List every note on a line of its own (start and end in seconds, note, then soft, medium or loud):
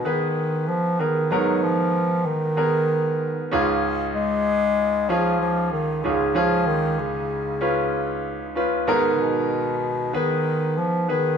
0.00 1.28 G#2 medium
0.00 1.28 D#3 medium
0.00 0.05 B3 medium
0.00 0.05 G#4 medium
0.00 1.00 A#4 medium
0.05 0.70 D#3 medium
0.05 0.83 B3 medium
0.05 0.84 G#4 medium
0.05 0.84 B4 medium
0.68 1.02 F3 medium
0.99 1.33 D#3 medium
0.99 1.25 B3 soft
0.99 1.26 G#4 soft
0.99 1.26 A#4 medium
1.31 3.48 G#2 medium
1.31 3.48 D#3 medium
1.31 1.64 F#3 medium
1.31 2.36 B3 medium
1.31 2.36 G#4 medium
1.31 2.36 A#4 medium
1.63 2.27 F3 medium
2.26 3.52 D#3 medium
2.56 3.35 B3 medium
2.56 3.36 G#4 medium
2.56 3.36 A#4 medium
3.51 6.00 C#2 medium
3.51 6.00 G#2 medium
3.51 4.56 C#4 medium
3.51 4.57 F4 medium
3.51 4.57 G#4 medium
4.15 5.11 G#3 loud
5.09 5.40 F3 medium
5.09 5.88 C#4 medium
5.09 5.88 F4 medium
5.09 5.88 G#4 medium
5.41 5.70 F3 medium
5.72 6.05 D#3 medium
6.03 8.53 C#2 medium
6.03 8.53 G#2 medium
6.03 6.36 C#3 medium
6.03 6.30 C#4 medium
6.03 6.30 F4 medium
6.03 6.31 G#4 medium
6.35 6.68 F3 medium
6.35 7.40 C#4 medium
6.35 7.40 F4 medium
6.35 7.40 G#4 medium
6.67 7.00 D#3 medium
6.99 8.56 C#3 medium
7.61 8.40 C#4 medium
7.61 8.40 F4 medium
7.61 8.40 B4 medium
8.55 8.82 C#4 medium
8.55 8.82 F4 medium
8.55 8.83 B4 medium
8.87 11.36 G#2 medium
8.87 11.36 D#3 medium
8.87 9.92 B3 medium
8.87 9.92 G#4 medium
8.87 9.93 A#4 medium
9.13 9.21 C#3 medium
9.20 10.17 B2 medium
10.13 10.79 D#3 medium
10.13 10.92 B3 medium
10.13 10.92 G#4 medium
10.13 10.93 B4 medium
10.78 11.09 F3 medium
11.08 11.38 D#3 medium
11.08 11.35 B3 medium
11.08 11.35 G#4 medium
11.08 11.35 B4 medium